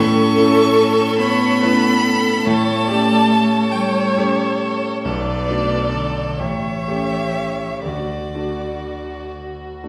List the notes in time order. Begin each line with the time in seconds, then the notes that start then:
Already playing: A2 C#4 A4 C#6
0.37 A3 C#4 E4
1.19 B3 C#5 B5
1.62 A3 C#4 E4 B4
2.05 A4
2.45 A2 A3 C#5 A5
2.87 A3 C#4 G4 D5
3.30 C#5
3.72 G3 G5
4.17 A3 C#4 G4
5.05 B1 B2 A4 B4 D5
5.49 A3 D4 F#4
5.91 D3 D5
6.39 A1 E3 G4 C#5 E5
6.88 A3 C#4 G4
7.84 D2 D3 F#4 D5
8.35 A3 D4 F#4
9.84 A3 D4 F#4